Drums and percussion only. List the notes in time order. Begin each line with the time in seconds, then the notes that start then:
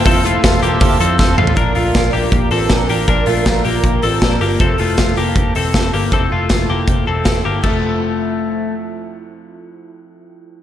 0.06 kick, hi-hat pedal, open hi-hat
0.24 hi-hat pedal, open hi-hat
0.44 kick, snare, hi-hat pedal, open hi-hat
0.62 hi-hat pedal, open hi-hat
0.81 kick, hi-hat pedal, open hi-hat
1.00 hi-hat pedal, open hi-hat
1.19 kick, snare
1.38 mid tom
1.47 floor tom
1.57 kick, closed hi-hat
1.75 open hi-hat
1.95 kick, snare, closed hi-hat
2.13 open hi-hat
2.32 kick, closed hi-hat
2.51 open hi-hat
2.70 kick, snare
2.89 open hi-hat
3.08 kick, closed hi-hat
3.26 open hi-hat
3.46 kick, snare, closed hi-hat
3.65 open hi-hat
3.84 kick, closed hi-hat
4.02 open hi-hat
4.22 kick, snare
4.41 open hi-hat
4.60 kick, closed hi-hat
4.78 open hi-hat
4.97 kick, snare, closed hi-hat
5.16 open hi-hat
5.36 kick, closed hi-hat
5.55 open hi-hat
5.74 kick, snare, closed hi-hat
5.93 open hi-hat
6.12 kick, closed hi-hat
6.49 kick, snare, closed hi-hat
6.88 kick, closed hi-hat
7.25 kick, snare, closed hi-hat
7.64 kick, crash